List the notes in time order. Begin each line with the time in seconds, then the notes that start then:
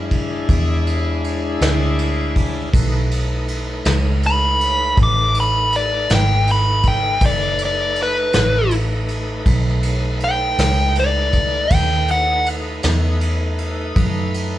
Already playing: F#2 G#3 D4 E4
0.11 kick, ride
0.49 E2, kick, ride
0.87 ride
1.24 ride
1.61 D2, snare, ride
1.99 ride
2.36 kick, ride
2.73 B1 A3 D#4 B4, kick, ride
3.11 ride
3.48 ride
3.85 C#2, snare, ride
4.23 B5, ride
4.61 ride
4.97 A1, kick, ride
5.03 D6
5.35 ride
5.40 B5
5.72 D5, ride
6.10 G#1, snare, ride
6.15 G5
6.47 ride
6.51 B5
6.83 kick, ride
6.88 G5
7.21 F#1 A3 D#4 B4, kick, ride
7.26 D5
7.58 ride
7.65 D5
7.96 ride
8.03 B4
8.33 A1, snare, ride
8.71 ride
9.08 ride
9.46 B1, kick, ride
9.83 ride
10.20 ride
10.24 G5
10.58 C#2, snare, ride
10.95 ride
11.00 D5
11.33 kick, ride
11.71 D#2 A3 D#4 B4 G5, kick, ride
12.08 F#5, ride
12.46 ride
12.83 E2, snare, ride
13.21 ride
13.58 ride
13.96 F#2, kick, ride
14.34 ride